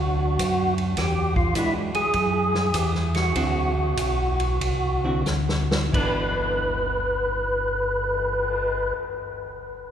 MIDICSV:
0, 0, Header, 1, 6, 480
1, 0, Start_track
1, 0, Key_signature, 1, "major"
1, 0, Tempo, 587084
1, 792, Time_signature, 4, 2, 24, 8
1, 2240, Tempo, 620476
1, 3680, Tempo, 663717
1, 4640, Tempo, 685714
1, 7429, End_track
2, 0, Start_track
2, 0, Title_t, "Tonewheel organ"
2, 0, Program_c, 0, 16
2, 0, Note_on_c, 0, 66, 90
2, 606, Note_off_c, 0, 66, 0
2, 805, Note_on_c, 0, 67, 89
2, 1095, Note_off_c, 0, 67, 0
2, 1115, Note_on_c, 0, 65, 92
2, 1261, Note_off_c, 0, 65, 0
2, 1279, Note_on_c, 0, 64, 95
2, 1421, Note_off_c, 0, 64, 0
2, 1597, Note_on_c, 0, 68, 107
2, 2246, Note_on_c, 0, 67, 93
2, 2260, Note_off_c, 0, 68, 0
2, 2385, Note_off_c, 0, 67, 0
2, 2562, Note_on_c, 0, 66, 76
2, 4128, Note_off_c, 0, 66, 0
2, 4649, Note_on_c, 0, 71, 72
2, 6745, Note_off_c, 0, 71, 0
2, 7429, End_track
3, 0, Start_track
3, 0, Title_t, "Hollow-body jazz guitar"
3, 0, Program_c, 1, 26
3, 1272, Note_on_c, 1, 52, 53
3, 1279, Note_on_c, 1, 56, 49
3, 1279, Note_on_c, 1, 62, 51
3, 1283, Note_on_c, 1, 66, 48
3, 1559, Note_off_c, 1, 52, 0
3, 1563, Note_off_c, 1, 56, 0
3, 1563, Note_off_c, 1, 62, 0
3, 1565, Note_off_c, 1, 66, 0
3, 2716, Note_on_c, 1, 50, 57
3, 2719, Note_on_c, 1, 60, 67
3, 2723, Note_on_c, 1, 64, 56
3, 2726, Note_on_c, 1, 66, 64
3, 2999, Note_off_c, 1, 50, 0
3, 3000, Note_off_c, 1, 60, 0
3, 3003, Note_off_c, 1, 64, 0
3, 3004, Note_off_c, 1, 66, 0
3, 3997, Note_on_c, 1, 50, 54
3, 4000, Note_on_c, 1, 60, 51
3, 4003, Note_on_c, 1, 64, 53
3, 4008, Note_on_c, 1, 66, 56
3, 4138, Note_off_c, 1, 50, 0
3, 4139, Note_off_c, 1, 60, 0
3, 4141, Note_off_c, 1, 64, 0
3, 4143, Note_off_c, 1, 66, 0
3, 4634, Note_on_c, 1, 52, 59
3, 4649, Note_on_c, 1, 59, 58
3, 4657, Note_on_c, 1, 62, 66
3, 6758, Note_off_c, 1, 52, 0
3, 6773, Note_off_c, 1, 59, 0
3, 6781, Note_off_c, 1, 62, 0
3, 7429, End_track
4, 0, Start_track
4, 0, Title_t, "Tonewheel organ"
4, 0, Program_c, 2, 16
4, 0, Note_on_c, 2, 38, 90
4, 305, Note_off_c, 2, 38, 0
4, 316, Note_on_c, 2, 42, 93
4, 778, Note_off_c, 2, 42, 0
4, 794, Note_on_c, 2, 40, 81
4, 1256, Note_off_c, 2, 40, 0
4, 1270, Note_on_c, 2, 44, 82
4, 1568, Note_off_c, 2, 44, 0
4, 1591, Note_on_c, 2, 44, 46
4, 1671, Note_off_c, 2, 44, 0
4, 1751, Note_on_c, 2, 42, 93
4, 2224, Note_off_c, 2, 42, 0
4, 2241, Note_on_c, 2, 40, 89
4, 2695, Note_off_c, 2, 40, 0
4, 2714, Note_on_c, 2, 38, 77
4, 3176, Note_off_c, 2, 38, 0
4, 3191, Note_on_c, 2, 35, 80
4, 3666, Note_off_c, 2, 35, 0
4, 3686, Note_on_c, 2, 36, 89
4, 4141, Note_off_c, 2, 36, 0
4, 4153, Note_on_c, 2, 38, 85
4, 4626, Note_off_c, 2, 38, 0
4, 4642, Note_on_c, 2, 31, 81
4, 6738, Note_off_c, 2, 31, 0
4, 7429, End_track
5, 0, Start_track
5, 0, Title_t, "Cymbal swell"
5, 4969, Note_on_c, 9, 59, 43
5, 6469, Note_off_c, 9, 59, 0
5, 7429, End_track
6, 0, Start_track
6, 0, Title_t, "Drums"
6, 320, Note_on_c, 9, 36, 17
6, 321, Note_on_c, 9, 44, 59
6, 321, Note_on_c, 9, 51, 66
6, 402, Note_off_c, 9, 36, 0
6, 403, Note_off_c, 9, 44, 0
6, 403, Note_off_c, 9, 51, 0
6, 637, Note_on_c, 9, 51, 39
6, 719, Note_off_c, 9, 51, 0
6, 792, Note_on_c, 9, 51, 58
6, 796, Note_on_c, 9, 36, 20
6, 796, Note_on_c, 9, 38, 35
6, 873, Note_off_c, 9, 51, 0
6, 877, Note_off_c, 9, 36, 0
6, 877, Note_off_c, 9, 38, 0
6, 1113, Note_on_c, 9, 36, 58
6, 1195, Note_off_c, 9, 36, 0
6, 1268, Note_on_c, 9, 44, 51
6, 1268, Note_on_c, 9, 51, 54
6, 1272, Note_on_c, 9, 36, 19
6, 1350, Note_off_c, 9, 44, 0
6, 1350, Note_off_c, 9, 51, 0
6, 1354, Note_off_c, 9, 36, 0
6, 1591, Note_on_c, 9, 51, 45
6, 1672, Note_off_c, 9, 51, 0
6, 1745, Note_on_c, 9, 51, 47
6, 1753, Note_on_c, 9, 36, 23
6, 1827, Note_off_c, 9, 51, 0
6, 1834, Note_off_c, 9, 36, 0
6, 2082, Note_on_c, 9, 38, 39
6, 2163, Note_off_c, 9, 38, 0
6, 2239, Note_on_c, 9, 44, 61
6, 2239, Note_on_c, 9, 51, 64
6, 2242, Note_on_c, 9, 36, 20
6, 2316, Note_off_c, 9, 44, 0
6, 2316, Note_off_c, 9, 51, 0
6, 2319, Note_off_c, 9, 36, 0
6, 2401, Note_on_c, 9, 38, 26
6, 2478, Note_off_c, 9, 38, 0
6, 2553, Note_on_c, 9, 51, 42
6, 2561, Note_on_c, 9, 38, 40
6, 2631, Note_off_c, 9, 51, 0
6, 2639, Note_off_c, 9, 38, 0
6, 2714, Note_on_c, 9, 36, 21
6, 2716, Note_on_c, 9, 51, 62
6, 2791, Note_off_c, 9, 36, 0
6, 2793, Note_off_c, 9, 51, 0
6, 3193, Note_on_c, 9, 36, 22
6, 3194, Note_on_c, 9, 44, 53
6, 3194, Note_on_c, 9, 51, 66
6, 3271, Note_off_c, 9, 36, 0
6, 3272, Note_off_c, 9, 44, 0
6, 3272, Note_off_c, 9, 51, 0
6, 3522, Note_on_c, 9, 51, 43
6, 3599, Note_off_c, 9, 51, 0
6, 3685, Note_on_c, 9, 36, 19
6, 3688, Note_on_c, 9, 51, 59
6, 3757, Note_off_c, 9, 36, 0
6, 3760, Note_off_c, 9, 51, 0
6, 4154, Note_on_c, 9, 44, 53
6, 4158, Note_on_c, 9, 38, 43
6, 4227, Note_off_c, 9, 44, 0
6, 4230, Note_off_c, 9, 38, 0
6, 4322, Note_on_c, 9, 38, 52
6, 4394, Note_off_c, 9, 38, 0
6, 4485, Note_on_c, 9, 38, 75
6, 4557, Note_off_c, 9, 38, 0
6, 4645, Note_on_c, 9, 36, 49
6, 4649, Note_on_c, 9, 49, 51
6, 4715, Note_off_c, 9, 36, 0
6, 4719, Note_off_c, 9, 49, 0
6, 7429, End_track
0, 0, End_of_file